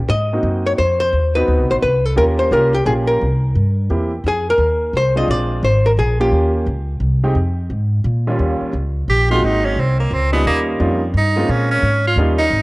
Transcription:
0.09 upright bass G#2, hollow-body jazz guitar D#5
0.33 grand piano A#3 C4 D#4 F#4
0.43 upright bass F#2
0.66 hollow-body jazz guitar C#5
0.78 upright bass F2, hollow-body jazz guitar C5
1.00 hollow-body jazz guitar C5
1.13 upright bass D#2
1.35 grand piano B3 C4 D#4 F#4, hollow-body jazz guitar B4
1.48 upright bass D2
1.59 upright bass C2
1.71 upright bass A1, hollow-body jazz guitar C5
1.82 upright bass C2, hollow-body jazz guitar B4
2.05 hollow-body jazz guitar A4
2.16 upright bass D#2, grand piano A#3 C#4 F4 G4, hollow-body jazz guitar A#4
2.39 hollow-body jazz guitar C5
2.51 upright bass C2, grand piano A#3 C#4 F4 G4, hollow-body jazz guitar A#4
2.74 hollow-body jazz guitar G4
2.85 upright bass A#1, grand piano A#3 C#4 F4 G4, hollow-body jazz guitar G#4
3.08 hollow-body jazz guitar A#4
3.21 upright bass C2
3.55 upright bass G2
3.90 upright bass E2, grand piano A#3 C4 E4 G4
4.24 upright bass F2, hollow-body jazz guitar G#4
4.50 hollow-body jazz guitar A#4
4.58 upright bass D#2
4.93 upright bass C2, hollow-body jazz guitar C5
5.16 grand piano G#3 C4 D4 F4, hollow-body jazz guitar D#5
5.28 upright bass A#1, hollow-body jazz guitar D5
5.63 upright bass G#1, hollow-body jazz guitar C5
5.86 hollow-body jazz guitar A#4
5.97 upright bass A#1, hollow-body jazz guitar G#4
6.20 grand piano A#3 C#4 F4 G4, hollow-body jazz guitar G4
6.32 upright bass D#2
6.66 upright bass C#2
7.00 upright bass C2
7.23 grand piano G#3 C4 D#4 G4
7.35 upright bass F2
7.70 upright bass G#2
8.04 upright bass A#2
8.27 grand piano D#2 G3 A#3 C#4 F4
8.39 upright bass D#2
8.61 muted upright bass stroke
8.73 upright bass C#2
9.08 upright bass A#1, tenor saxophone G4
9.30 grand piano G#3 A#3 C4 D#4 F#4, tenor saxophone F4
9.42 upright bass G#1, tenor saxophone D#4
9.65 tenor saxophone C#4
9.76 upright bass C2
9.80 tenor saxophone C4
10.00 tenor saxophone A#3
10.11 upright bass C#2, tenor saxophone C4
10.32 grand piano G3 A#3 C#4 D#4 F4, tenor saxophone B3
10.45 upright bass D#2, tenor saxophone A#3
10.80 upright bass F2, grand piano G3 A#3 C#4 D#4 F4
11.14 upright bass G2, tenor saxophone D#4
11.36 grand piano G#3 A#3 C4 C#4 F4
11.49 upright bass A#2, tenor saxophone C#4
11.71 tenor saxophone C#4
11.82 upright bass G#2
12.07 tenor saxophone F4
12.16 upright bass D#2, grand piano G3 A#3 C#4 D#4 F4
12.38 tenor saxophone D#4
12.50 upright bass G#1

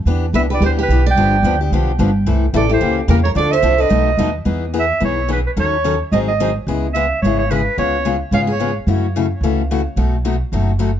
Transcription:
0.05 upright bass E2, steel-string acoustic guitar E3 B3 D4 G4
0.33 upright bass C2, steel-string acoustic guitar E3 B3 D4 G4 B4, clarinet E5
0.50 steel-string acoustic guitar B3 D4 G4 B4
0.54 clarinet D5
0.60 upright bass D2, steel-string acoustic guitar E3 B3 D4 G4
0.66 clarinet C5
0.79 steel-string acoustic guitar G4
0.83 clarinet B4
0.88 upright bass B1, steel-string acoustic guitar E3 B3 D4 G4
1.06 steel-string acoustic guitar D5
1.11 clarinet G5
1.16 upright bass G1, steel-string acoustic guitar D3 F3 B3 D4 G4
1.43 upright bass D2, steel-string acoustic guitar D3 F3 B3 D4 G4
1.61 steel-string acoustic guitar B3 D4 G4
1.71 upright bass B1, steel-string acoustic guitar D3 F3 B3 D4 G4
1.98 upright bass G1, steel-string acoustic guitar D3 F3 B3 D4 G4
2.26 upright bass C2, steel-string acoustic guitar C3 E3 A3 E4 A4
2.53 upright bass A1, steel-string acoustic guitar C3 E3 A3 E4 A4, clarinet D5
2.69 steel-string acoustic guitar A3 E4 G4 A4, clarinet C5
2.81 upright bass C#2, steel-string acoustic guitar C#3 E3 A#3 C#4 G4
3.08 upright bass E2, steel-string acoustic guitar C#3 E3 A#3 C#4 G4, clarinet A#4
3.24 steel-string acoustic guitar A#4, clarinet C#5
3.35 upright bass D2, steel-string acoustic guitar D3 F3 C4 D4 A4, clarinet D5
3.52 steel-string acoustic guitar C5, clarinet E5
3.63 upright bass C2, steel-string acoustic guitar D3 F3 C4 D4 A4
3.78 steel-string acoustic guitar C4 D4 A4 B4, clarinet D#5
3.89 upright bass B1, steel-string acoustic guitar B2 F#3 A3 D#4 F#4
4.17 upright bass D#2, steel-string acoustic guitar B2 F#3 A3 D#4 F#4
4.45 upright bass E2, steel-string acoustic guitar E3 B3 D#4 G#4
4.74 steel-string acoustic guitar E3 B3 D#4 G#4
4.80 clarinet E5
5.00 upright bass B1, steel-string acoustic guitar E3 B3 D#4 G#4
5.05 clarinet C#5
5.29 steel-string acoustic guitar E3 B3 D#4 G#4, clarinet B4
5.47 clarinet B4
5.57 upright bass D#2, steel-string acoustic guitar D#3 F#3 C#4 D#4 A4, clarinet C#5
5.84 steel-string acoustic guitar D#3 F#3 C#4 D#4 A4
6.12 upright bass G#1, steel-string acoustic guitar D#3 F#3 C4 D#4 G#4, clarinet D#5
6.28 clarinet D#5
6.40 steel-string acoustic guitar D#3 F#3 C4 D#4 G#4
6.67 upright bass C#2, steel-string acoustic guitar C#3 G#3 B3 E4 G#4
6.94 steel-string acoustic guitar C#3 G#3 B3 E4 G#4, clarinet E5
7.22 upright bass G#1, steel-string acoustic guitar C#3 G#3 B3 E4 G#4, clarinet C#5
7.39 clarinet C#5
7.51 steel-string acoustic guitar C#3 G#3 B3 E4 G#4, clarinet B4
7.78 upright bass C#2, steel-string acoustic guitar C#3 G#3 B3 F4 G#4, clarinet C#5
8.05 steel-string acoustic guitar C#3 G#3 B3 F4 G#4
8.31 upright bass G#1, steel-string acoustic guitar C#3 G#3 B3 F4 G#4 C#5, clarinet F5
8.47 steel-string acoustic guitar G#4
8.52 clarinet C#5
8.60 steel-string acoustic guitar C#3 G#3 B3 F4 G#4
8.86 upright bass F#2, steel-string acoustic guitar C#3 E3 A3 C#4 F#4
9.16 steel-string acoustic guitar C#3 E3 A3 C#4 F#4
9.41 upright bass C#2, steel-string acoustic guitar C#3 E3 A3 C#4 F#4
9.71 steel-string acoustic guitar C#3 E3 A3 C#4 F#4
9.96 upright bass B1, steel-string acoustic guitar B2 F#3 A3 D#4 F#4
10.25 steel-string acoustic guitar B2 F#3 A3 D#4 F#4
10.52 upright bass F#1, steel-string acoustic guitar B2 F#3 A3 D#4 F#4
10.79 steel-string acoustic guitar B2 F#3 A3 D#4 F#4

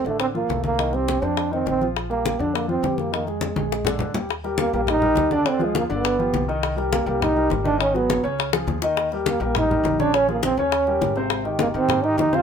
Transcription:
0.05 upright bass A1, grand piano D3 D4, trombone A3, high bongo
0.20 trombone C4, high bongo, high conga
0.34 grand piano F3 F4, trombone A#3, high conga
0.49 upright bass C2, grand piano A3 A4, high bongo, low bongo, high conga
0.64 trombone A#3, high bongo, high conga
0.78 grand piano D#3 D#4, high bongo, high conga
0.92 grand piano G3 G4, trombone C4, high bongo, high conga
1.08 high bongo, high conga
1.22 upright bass F2, grand piano C4 C5, trombone D4, high bongo
1.37 high bongo, high conga
1.51 grand piano D#3 D#4, trombone C4, high conga
1.66 upright bass A#1, trombone C4, high bongo, low bongo, high conga
1.81 grand piano F3 F4, high bongo, high conga
1.97 high bongo, high conga
2.10 grand piano G3 G4, trombone A#3, high bongo, high conga
2.25 high bongo, high conga
2.39 upright bass F2, grand piano D3 D4, trombone D4, high bongo
2.54 trombone A#3, high bongo, high conga
2.68 grand piano F3 F4, trombone C4, high conga
2.83 upright bass F2, grand piano G3 G4, high bongo, low bongo, high conga
2.98 trombone A#3, high bongo, high conga
3.12 grand piano D#3 D#4, trombone A#3, high bongo, high conga
3.27 grand piano G#3 G#4, trombone G#3, high bongo, high conga
3.41 trombone G#3, high bongo, high conga
3.56 upright bass A#1, grand piano G#3 G#4, high bongo, high conga
3.72 high bongo
3.85 grand piano D3 D4, high bongo, low conga
3.99 upright bass D#2, low bongo, low conga
4.14 grand piano G3 G4, low bongo, low conga
4.29 high bongo, high conga
4.44 grand piano G3 G4 A#4, high bongo, high conga
4.58 trombone A#3, high bongo, high conga
4.73 upright bass A#1, grand piano G3 G4 A#4, trombone A#3, high bongo
4.87 trombone D#4, high bongo, high conga, low conga
5.02 grand piano G3 G4 A#4, high conga, low conga
5.16 upright bass D2, high bongo, low bongo, high conga
5.31 grand piano D3 D4 D5, trombone D4, high bongo, high conga
5.45 grand piano D3 D4 D5, trombone C4, high bongo, high conga
5.59 grand piano F3 F4 G#4, high bongo, high conga
5.64 trombone G#3
5.75 trombone A#3, high bongo, high conga
5.89 upright bass G1, grand piano D3 D4 D5, high bongo
5.94 trombone B3
6.04 high bongo, high conga
6.19 grand piano F3 F4 G4, high conga
6.34 upright bass C2, high bongo, low bongo, high conga
6.48 grand piano D#3 D#4 D#5, high bongo, high conga
6.63 high bongo, high conga
6.76 grand piano G3 G4 A#4, high bongo, high conga
6.92 trombone A#3, high bongo, high conga
7.06 upright bass C2, grand piano G3 G4 A#4, trombone A#3, high bongo
7.21 trombone D#4, high bongo, high conga, low conga
7.35 grand piano G3 G4 A#4, high conga
7.50 upright bass G#1, high bongo, low bongo, high conga
7.64 grand piano D#3 D#4 D#5, trombone D4, high bongo, high conga
7.78 grand piano D#3 D#4 D#5, trombone C#4, high bongo, high conga
7.94 grand piano F#3 F#4 G#4, trombone B3, high bongo, high conga
8.10 high bongo, high conga
8.23 upright bass C#2, grand piano C#3 C#4 C#5, high bongo
8.39 high bongo, high conga
8.53 grand piano F3 F4 G#4, high bongo, high conga
8.67 upright bass D#2, low bongo, high conga
8.82 grand piano D#3 D#4 D#5, low bongo, high conga
8.97 high bongo, high conga
9.12 grand piano G3 G4 A#4, high bongo, high conga
9.26 trombone A#3, high bongo, high conga
9.40 upright bass A#1, grand piano G3 G4 A#4, trombone A#3, high bongo
9.55 trombone D#4, high bongo, high conga, low conga
9.70 grand piano G3 G4 A#4, high conga, low conga
9.84 upright bass A#1, high bongo, low bongo, high conga
9.99 grand piano C#3 C#4 C#5, trombone D4, high bongo, high conga
10.14 grand piano C#3 C#4 C#5, trombone C#4, high bongo, high conga
10.28 grand piano F3 F4 G#4, trombone A#3, high bongo, high conga
10.43 trombone C4, high bongo, high conga
10.57 upright bass D#2, grand piano C#3 C#4 C#5, trombone C#4, high bongo
10.72 high bongo, high conga
10.87 grand piano G3 G4 A#4, high conga
11.01 upright bass G#1, high bongo, low bongo, high conga
11.16 grand piano C3 C4 C5, high bongo, high conga
11.30 high bongo, high conga
11.44 grand piano D#3 D#4 G4, high bongo, high conga
11.59 trombone A#3, high bongo, high conga
11.74 upright bass G#2, grand piano D#3 D#4 G4, trombone C4, high bongo
11.89 high bongo, high conga, low conga
12.03 grand piano D#3 D#4 G4, trombone D#4, high conga
12.17 upright bass F2, trombone D#4, high bongo, low bongo, high conga
12.32 grand piano C3 C4 C5, trombone F4, high bongo, high conga

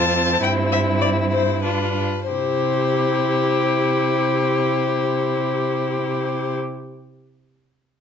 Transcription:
Already playing: cello F2, viola C4, violin F4 A5
0.42 cello G2, violin E4 G5
0.72 violin E5
1.01 violin D5
1.32 violin C5
1.64 viola D4, violin F4 B4
2.28 cello C3, viola E4, violin G4 C5

